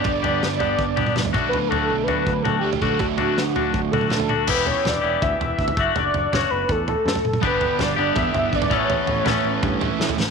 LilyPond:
<<
  \new Staff \with { instrumentName = "Analog synth lead" } { \time 4/4 \key d \major \tempo 4 = 163 d''4. d''2 r8 | b'8 a'4 b'4 a'8 g'8 a'8 | fis'2~ fis'8 a'4. | b'8 cis''8 d''4 e''8 e''4. |
d''4 cis''8 b'8 a'8 a'4. | b'4 d''4 e''8 e''8 d''8 cis''8~ | cis''2. r4 | }
  \new Staff \with { instrumentName = "Clean electric guitar" } { \time 4/4 \key d \major <b d' g'>8 <b d' g'>8 r8 <b d' g'>8 r8 <b d' g'>8 r8 <a d' fis'>8 | r8 <a d' fis'>8 r8 <a d' fis'>8 r8 <a d' fis'>8 r8 <a d' fis'>8 | r8 <a d' fis'>8 r8 <a d' fis'>8 r8 <a d' fis'>8 r8 <a d' fis'>8 | <e b e' g'>4. <e b e' g'>2 <a d' fis'>8~ |
<a d' fis'>4 <a d' fis'>2~ <a d' fis'>8 r8 | <b d' g'>4. <b d' g'>2 <e b cis' a'>8~ | <e b cis' a'>4 <e b cis' a'>2~ <e b cis' a'>8 r8 | }
  \new Staff \with { instrumentName = "Overdriven electric guitar" } { \clef bass \time 4/4 \key d \major <g, d g b d'>2.~ <g, d g b d'>8 <d fis a d'>8~ | <d fis a d'>2. <d fis a d'>8 <d fis a d'>8~ | <d fis a d'>2. <d fis a d'>8 r8 | r1 |
r1 | <g, d g b d'>4. <g, d g b d'>4. <g, d g b d'>8 <a, e a cis' e'>8~ | <a, e a cis' e'>4 <a, e a cis' e'>4. <a, e a cis' e'>4 r8 | }
  \new Staff \with { instrumentName = "Picked electric bass" } { \clef bass \time 4/4 \key d \major g,,8 g,,8 g,,8 g,,8 g,,8 g,,8 g,,8 d,8 | d,4 b,,8 d,8 d,8 d,8 d,8 d,8 | d,8 d,8 d,8 d,8 d,8 d,8 d,8 d,8 | e,,4 e,,8 e,,8 d,8 e,,8 d,8 fis,,8 |
fis,,8 fis,,8 fis,,8 fis,,8 e,4 fis,8 fis,,8 | g,,4 g,,8 g,,8 e,8 g,,8 aes,,8 a,,8 | a,,8 a,,8 a,,8 a,,8 g,4 a,8 a,,8 | }
  \new DrumStaff \with { instrumentName = "Drums" } \drummode { \time 4/4 <bd tomfh>8 tomfh8 sn8 tomfh8 bd8 <tomfh toml>16 toml16 <sn toml>16 tomfh16 <bd toml>8 | tomfh8 tomfh8 r8 tomfh8 bd8 <tomfh toml>8 r16 tomfh16 <bd toml>8 | <bd tomfh>8 tomfh8 sn8 tomfh8 bd8 <tomfh toml>16 toml16 <sn toml>16 tomfh16 toml8 | <cymc bd tomfh>8 tomfh8 <sn tomfh>4 <bd tomfh>8 tomfh8 bd16 tomfh16 bd8 |
tomfh8 tomfh8 <sn tomfh toml>4 <bd tomfh>8 tomfh8 sn16 tomfh16 toml16 toml16 | <bd tomfh>8 tomfh8 <sn tomfh>4 <bd tomfh>8 tomfh8 bd16 tomfh16 bd8 | tomfh8 tomfh8 <sn tomfh toml>4 <bd tomfh>8 tomfh8 sn16 tomfh16 sn8 | }
>>